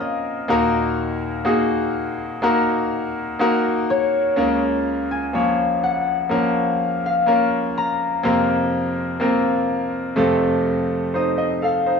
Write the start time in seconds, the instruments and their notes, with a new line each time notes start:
Already playing: grand piano A#2 F3 A#3 C4 C#4 F4 A#4, harp F5
0.00 harp D#5
0.48 grand piano D#2 A#2 A#3 D#4 F#4 A#4
1.45 grand piano A#3 D#4 F#4 G#4
2.42 grand piano A#3 D#4 F#4 A#4
3.39 grand piano A#3 D#4 F#4 A#4
3.90 harp C#5
4.36 grand piano C#2 C#3 A#3 C#4 F4 A#4
5.11 harp G#5
5.33 grand piano F3 A#3 C#4 C#5
5.84 harp F#5
6.29 grand piano F3 A#3 C#4 A#4
7.06 harp F5
7.26 grand piano A#3 C#4 F4 A#4
7.78 harp A#5
8.23 grand piano F2 C3 A#3 C4 F4 A#4
9.20 grand piano A#3 C4 F4 A#4
10.16 grand piano F2 C3 A3 C4 F4 A4
11.14 grand piano D#4 C5, harp D#5
11.38 grand piano D#5
11.62 grand piano A4 F5, harp F5
11.86 grand piano D#4 C5